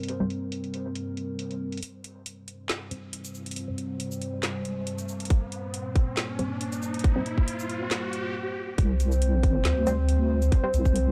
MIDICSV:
0, 0, Header, 1, 6, 480
1, 0, Start_track
1, 0, Tempo, 434783
1, 95, Time_signature, 4, 2, 24, 8
1, 12273, End_track
2, 0, Start_track
2, 0, Title_t, "Analog synth pad"
2, 0, Program_c, 0, 89
2, 0, Note_on_c, 0, 55, 71
2, 0, Note_on_c, 0, 60, 67
2, 0, Note_on_c, 0, 70, 84
2, 1971, Note_off_c, 0, 55, 0
2, 1971, Note_off_c, 0, 70, 0
2, 1972, Note_off_c, 0, 60, 0
2, 2014, Note_on_c, 0, 72, 87
2, 2015, Note_on_c, 0, 55, 77
2, 2015, Note_on_c, 0, 60, 72
2, 5816, Note_off_c, 0, 60, 0
2, 5855, Note_on_c, 0, 58, 71
2, 9170, Note_off_c, 0, 72, 0
2, 9171, Note_off_c, 0, 55, 0
2, 9181, Note_off_c, 0, 58, 0
2, 9695, Note_on_c, 0, 55, 76
2, 9695, Note_on_c, 0, 60, 75
2, 9695, Note_on_c, 0, 72, 88
2, 12273, Note_off_c, 0, 55, 0
2, 12273, Note_off_c, 0, 60, 0
2, 12273, Note_off_c, 0, 72, 0
2, 12273, End_track
3, 0, Start_track
3, 0, Title_t, "Synth stab"
3, 0, Program_c, 1, 62
3, 223, Note_on_c, 1, 55, 76
3, 223, Note_on_c, 1, 60, 69
3, 223, Note_on_c, 1, 72, 82
3, 281, Note_off_c, 1, 55, 0
3, 281, Note_off_c, 1, 60, 0
3, 281, Note_off_c, 1, 72, 0
3, 3214, Note_on_c, 1, 55, 95
3, 3214, Note_on_c, 1, 60, 86
3, 3215, Note_on_c, 1, 72, 102
3, 3322, Note_off_c, 1, 55, 0
3, 3322, Note_off_c, 1, 60, 0
3, 3322, Note_off_c, 1, 72, 0
3, 4062, Note_on_c, 1, 72, 81
3, 4063, Note_on_c, 1, 55, 76
3, 4063, Note_on_c, 1, 60, 68
3, 4121, Note_off_c, 1, 55, 0
3, 4121, Note_off_c, 1, 60, 0
3, 4121, Note_off_c, 1, 72, 0
3, 7054, Note_on_c, 1, 55, 95
3, 7055, Note_on_c, 1, 60, 84
3, 7055, Note_on_c, 1, 72, 106
3, 7162, Note_off_c, 1, 55, 0
3, 7162, Note_off_c, 1, 60, 0
3, 7162, Note_off_c, 1, 72, 0
3, 7902, Note_on_c, 1, 55, 78
3, 7903, Note_on_c, 1, 60, 74
3, 7903, Note_on_c, 1, 72, 89
3, 7961, Note_off_c, 1, 55, 0
3, 7961, Note_off_c, 1, 60, 0
3, 7961, Note_off_c, 1, 72, 0
3, 10894, Note_on_c, 1, 55, 92
3, 10894, Note_on_c, 1, 60, 85
3, 10894, Note_on_c, 1, 72, 108
3, 11002, Note_off_c, 1, 55, 0
3, 11002, Note_off_c, 1, 60, 0
3, 11002, Note_off_c, 1, 72, 0
3, 11743, Note_on_c, 1, 55, 80
3, 11743, Note_on_c, 1, 60, 68
3, 11743, Note_on_c, 1, 72, 86
3, 11801, Note_off_c, 1, 55, 0
3, 11801, Note_off_c, 1, 60, 0
3, 11801, Note_off_c, 1, 72, 0
3, 12273, End_track
4, 0, Start_track
4, 0, Title_t, "Wobble bass"
4, 0, Program_c, 2, 39
4, 9695, Note_on_c, 2, 36, 98
4, 10637, Note_off_c, 2, 36, 0
4, 10653, Note_on_c, 2, 38, 89
4, 11596, Note_off_c, 2, 38, 0
4, 11855, Note_on_c, 2, 36, 100
4, 12273, Note_off_c, 2, 36, 0
4, 12273, End_track
5, 0, Start_track
5, 0, Title_t, "Riser"
5, 0, Program_c, 3, 103
5, 2014, Note_on_c, 3, 60, 73
5, 9214, Note_off_c, 3, 60, 0
5, 12273, End_track
6, 0, Start_track
6, 0, Title_t, "Drums"
6, 38, Note_on_c, 9, 42, 61
6, 94, Note_off_c, 9, 42, 0
6, 94, Note_on_c, 9, 42, 79
6, 204, Note_off_c, 9, 42, 0
6, 334, Note_on_c, 9, 42, 50
6, 444, Note_off_c, 9, 42, 0
6, 574, Note_on_c, 9, 42, 81
6, 684, Note_off_c, 9, 42, 0
6, 704, Note_on_c, 9, 42, 35
6, 815, Note_off_c, 9, 42, 0
6, 815, Note_on_c, 9, 42, 51
6, 925, Note_off_c, 9, 42, 0
6, 1054, Note_on_c, 9, 42, 80
6, 1164, Note_off_c, 9, 42, 0
6, 1293, Note_on_c, 9, 42, 53
6, 1404, Note_off_c, 9, 42, 0
6, 1534, Note_on_c, 9, 42, 78
6, 1645, Note_off_c, 9, 42, 0
6, 1664, Note_on_c, 9, 42, 37
6, 1774, Note_off_c, 9, 42, 0
6, 1903, Note_on_c, 9, 42, 48
6, 1959, Note_off_c, 9, 42, 0
6, 1959, Note_on_c, 9, 42, 61
6, 2015, Note_off_c, 9, 42, 0
6, 2015, Note_on_c, 9, 42, 77
6, 2125, Note_off_c, 9, 42, 0
6, 2255, Note_on_c, 9, 42, 51
6, 2365, Note_off_c, 9, 42, 0
6, 2495, Note_on_c, 9, 42, 80
6, 2605, Note_off_c, 9, 42, 0
6, 2736, Note_on_c, 9, 42, 49
6, 2847, Note_off_c, 9, 42, 0
6, 2975, Note_on_c, 9, 38, 122
6, 2975, Note_on_c, 9, 39, 92
6, 2975, Note_on_c, 9, 42, 80
6, 3086, Note_off_c, 9, 38, 0
6, 3086, Note_off_c, 9, 39, 0
6, 3086, Note_off_c, 9, 42, 0
6, 3216, Note_on_c, 9, 42, 55
6, 3326, Note_off_c, 9, 42, 0
6, 3456, Note_on_c, 9, 42, 83
6, 3566, Note_off_c, 9, 42, 0
6, 3584, Note_on_c, 9, 42, 35
6, 3584, Note_on_c, 9, 82, 59
6, 3694, Note_off_c, 9, 42, 0
6, 3694, Note_off_c, 9, 82, 0
6, 3694, Note_on_c, 9, 82, 51
6, 3804, Note_off_c, 9, 82, 0
6, 3822, Note_on_c, 9, 42, 49
6, 3878, Note_off_c, 9, 42, 0
6, 3878, Note_on_c, 9, 42, 65
6, 3934, Note_off_c, 9, 42, 0
6, 3934, Note_on_c, 9, 42, 78
6, 4044, Note_off_c, 9, 42, 0
6, 4174, Note_on_c, 9, 42, 50
6, 4285, Note_off_c, 9, 42, 0
6, 4414, Note_on_c, 9, 42, 82
6, 4525, Note_off_c, 9, 42, 0
6, 4543, Note_on_c, 9, 82, 57
6, 4654, Note_off_c, 9, 82, 0
6, 4654, Note_on_c, 9, 42, 53
6, 4764, Note_off_c, 9, 42, 0
6, 4894, Note_on_c, 9, 38, 119
6, 4894, Note_on_c, 9, 39, 95
6, 4894, Note_on_c, 9, 42, 76
6, 5005, Note_off_c, 9, 38, 0
6, 5005, Note_off_c, 9, 39, 0
6, 5005, Note_off_c, 9, 42, 0
6, 5134, Note_on_c, 9, 42, 55
6, 5245, Note_off_c, 9, 42, 0
6, 5375, Note_on_c, 9, 42, 78
6, 5485, Note_off_c, 9, 42, 0
6, 5503, Note_on_c, 9, 42, 34
6, 5503, Note_on_c, 9, 82, 56
6, 5614, Note_off_c, 9, 42, 0
6, 5614, Note_off_c, 9, 82, 0
6, 5614, Note_on_c, 9, 82, 50
6, 5724, Note_off_c, 9, 82, 0
6, 5742, Note_on_c, 9, 42, 49
6, 5799, Note_off_c, 9, 42, 0
6, 5799, Note_on_c, 9, 42, 63
6, 5854, Note_off_c, 9, 42, 0
6, 5854, Note_on_c, 9, 42, 79
6, 5855, Note_on_c, 9, 36, 126
6, 5964, Note_off_c, 9, 42, 0
6, 5965, Note_off_c, 9, 36, 0
6, 6095, Note_on_c, 9, 42, 51
6, 6205, Note_off_c, 9, 42, 0
6, 6334, Note_on_c, 9, 42, 78
6, 6445, Note_off_c, 9, 42, 0
6, 6574, Note_on_c, 9, 36, 112
6, 6575, Note_on_c, 9, 42, 51
6, 6685, Note_off_c, 9, 36, 0
6, 6685, Note_off_c, 9, 42, 0
6, 6814, Note_on_c, 9, 38, 127
6, 6814, Note_on_c, 9, 39, 93
6, 6814, Note_on_c, 9, 42, 76
6, 6924, Note_off_c, 9, 38, 0
6, 6924, Note_off_c, 9, 39, 0
6, 6924, Note_off_c, 9, 42, 0
6, 7054, Note_on_c, 9, 42, 53
6, 7165, Note_off_c, 9, 42, 0
6, 7295, Note_on_c, 9, 42, 81
6, 7405, Note_off_c, 9, 42, 0
6, 7423, Note_on_c, 9, 42, 33
6, 7423, Note_on_c, 9, 82, 58
6, 7533, Note_off_c, 9, 42, 0
6, 7533, Note_off_c, 9, 82, 0
6, 7534, Note_on_c, 9, 82, 52
6, 7644, Note_off_c, 9, 82, 0
6, 7663, Note_on_c, 9, 42, 50
6, 7720, Note_off_c, 9, 42, 0
6, 7720, Note_on_c, 9, 42, 60
6, 7774, Note_on_c, 9, 36, 127
6, 7775, Note_off_c, 9, 42, 0
6, 7775, Note_on_c, 9, 42, 76
6, 7885, Note_off_c, 9, 36, 0
6, 7885, Note_off_c, 9, 42, 0
6, 8014, Note_on_c, 9, 42, 49
6, 8125, Note_off_c, 9, 42, 0
6, 8143, Note_on_c, 9, 36, 62
6, 8253, Note_off_c, 9, 36, 0
6, 8255, Note_on_c, 9, 42, 82
6, 8365, Note_off_c, 9, 42, 0
6, 8383, Note_on_c, 9, 82, 58
6, 8494, Note_off_c, 9, 82, 0
6, 8495, Note_on_c, 9, 42, 48
6, 8606, Note_off_c, 9, 42, 0
6, 8736, Note_on_c, 9, 38, 127
6, 8736, Note_on_c, 9, 39, 90
6, 8736, Note_on_c, 9, 42, 79
6, 8846, Note_off_c, 9, 38, 0
6, 8846, Note_off_c, 9, 39, 0
6, 8846, Note_off_c, 9, 42, 0
6, 8976, Note_on_c, 9, 42, 53
6, 9086, Note_off_c, 9, 42, 0
6, 9695, Note_on_c, 9, 36, 124
6, 9695, Note_on_c, 9, 42, 83
6, 9806, Note_off_c, 9, 36, 0
6, 9806, Note_off_c, 9, 42, 0
6, 9936, Note_on_c, 9, 42, 52
6, 9936, Note_on_c, 9, 82, 52
6, 10046, Note_off_c, 9, 42, 0
6, 10046, Note_off_c, 9, 82, 0
6, 10065, Note_on_c, 9, 82, 54
6, 10175, Note_off_c, 9, 82, 0
6, 10176, Note_on_c, 9, 42, 86
6, 10286, Note_off_c, 9, 42, 0
6, 10415, Note_on_c, 9, 36, 108
6, 10416, Note_on_c, 9, 42, 54
6, 10525, Note_off_c, 9, 36, 0
6, 10526, Note_off_c, 9, 42, 0
6, 10655, Note_on_c, 9, 38, 122
6, 10655, Note_on_c, 9, 39, 94
6, 10655, Note_on_c, 9, 42, 83
6, 10765, Note_off_c, 9, 38, 0
6, 10765, Note_off_c, 9, 39, 0
6, 10765, Note_off_c, 9, 42, 0
6, 10895, Note_on_c, 9, 42, 56
6, 10895, Note_on_c, 9, 82, 62
6, 11005, Note_off_c, 9, 42, 0
6, 11005, Note_off_c, 9, 82, 0
6, 11135, Note_on_c, 9, 42, 81
6, 11245, Note_off_c, 9, 42, 0
6, 11504, Note_on_c, 9, 42, 39
6, 11504, Note_on_c, 9, 82, 61
6, 11614, Note_off_c, 9, 42, 0
6, 11614, Note_off_c, 9, 82, 0
6, 11615, Note_on_c, 9, 36, 125
6, 11615, Note_on_c, 9, 42, 79
6, 11725, Note_off_c, 9, 36, 0
6, 11725, Note_off_c, 9, 42, 0
6, 11855, Note_on_c, 9, 42, 53
6, 11855, Note_on_c, 9, 82, 50
6, 11966, Note_off_c, 9, 42, 0
6, 11966, Note_off_c, 9, 82, 0
6, 11983, Note_on_c, 9, 36, 63
6, 11984, Note_on_c, 9, 82, 53
6, 12094, Note_off_c, 9, 36, 0
6, 12094, Note_off_c, 9, 82, 0
6, 12095, Note_on_c, 9, 42, 84
6, 12206, Note_off_c, 9, 42, 0
6, 12273, End_track
0, 0, End_of_file